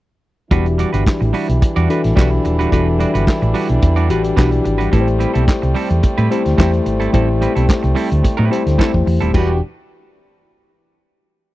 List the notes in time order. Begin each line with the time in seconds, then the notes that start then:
0.51 E1 E3 G3 D4 E4 F#4 G4 B4, kick, closed hi-hat
0.66 closed hi-hat
0.78 G3 D4 F#4 D5, closed hi-hat
0.93 G1 G3 D4 F#4 B4, closed hi-hat
1.06 kick, snare, clap
1.21 A1, muted clean electric guitar stroke, closed hi-hat
1.33 G3 D4 F#4 B4, open hi-hat
1.48 B1, muted clean electric guitar stroke, closed hi-hat
1.61 muted clean electric guitar stroke, kick, closed hi-hat
1.76 E2 G3 D4 F#4 D5, closed hi-hat
1.89 E3 G3 D4 F#4 A4 B4, closed hi-hat
2.04 A1, snare, closed hi-hat
2.16 B1 E3 G3 D4 F#4 G4 B4, kick, snare, clap
2.31 muted clean electric guitar stroke
2.44 D#1, muted clean electric guitar stroke, closed hi-hat
2.59 G3 D4 F#4 B4, closed hi-hat
2.72 E1 E3 G3 D4 F#4 A4 B4, kick, closed hi-hat
2.99 G3 D4 F#4 D5, closed hi-hat
3.14 G1 G3 D4 F#4 B4, closed hi-hat
3.27 kick, snare, clap
3.42 A1, muted clean electric guitar stroke, closed hi-hat
3.54 G3 D4 F#4 B4, open hi-hat
3.69 B1, muted clean electric guitar stroke, closed hi-hat
3.82 E2, muted clean electric guitar stroke, kick, closed hi-hat
3.96 G3 D4 F#4 D5, closed hi-hat
4.09 A1 E3 G3 D4 F#4 G4 B4, closed hi-hat
4.24 muted clean electric guitar stroke, closed hi-hat
4.36 B1 E3 G3 D4 F#4 G4 B4, kick, snare, clap
4.51 muted clean electric guitar stroke, closed hi-hat
4.64 G#1, muted clean electric guitar stroke, closed hi-hat
4.78 G3 D4 F#4 B4, closed hi-hat
4.91 A1 G3 A3 C4 E4 G4 A4 B4, kick, closed hi-hat
5.01 C5
5.08 closed hi-hat
5.19 G3 C4 E4 B4, closed hi-hat
5.34 B1 G3 C4 E4 A4, closed hi-hat
5.48 kick, snare, clap
5.62 C2, muted clean electric guitar stroke, closed hi-hat
5.75 G3 C4 E4 A4, open hi-hat
5.90 E2, muted clean electric guitar stroke, closed hi-hat
6.03 muted clean electric guitar stroke, kick, closed hi-hat
6.18 A2 G3 C4 E4 B4, closed hi-hat
6.30 G3 A3 C4 E4 G4 A4 C5, closed hi-hat
6.46 D2, snare, closed hi-hat
6.58 E2 G3 A3 C4 E4 G4 A4 C5, kick, snare, clap
6.72 muted clean electric guitar stroke, closed hi-hat
6.86 G#1, muted clean electric guitar stroke, closed hi-hat
7.00 G3 C4 E4 A4, closed hi-hat
7.12 A1 G3 A3 C4 E4 G4 A4 C5, kick, closed hi-hat
7.41 G3 C4 E4 B4, closed hi-hat
7.55 B1 G3 C4 E4 A4, closed hi-hat
7.69 kick, snare, clap
7.83 C2, muted clean electric guitar stroke, closed hi-hat
7.95 G3 C4 E4 A4, open hi-hat
8.10 D2, muted clean electric guitar stroke, closed hi-hat
8.23 muted clean electric guitar stroke, kick, closed hi-hat
8.37 A2 G3 C4 E4 B4
8.50 G3 A3 C4 E4 G4 A4 C5, closed hi-hat
8.66 D2, snare, closed hi-hat
8.78 G3 A3 C4 E4 G4 A4 C5, kick, snare, clap
8.93 E2, muted clean electric guitar stroke, kick
9.06 E2, muted clean electric guitar stroke, open hi-hat
9.21 D#1 G3 C4 E4 A4, closed hi-hat
9.34 E1 E3 G3 D4 F#4 G4 B4, kick, crash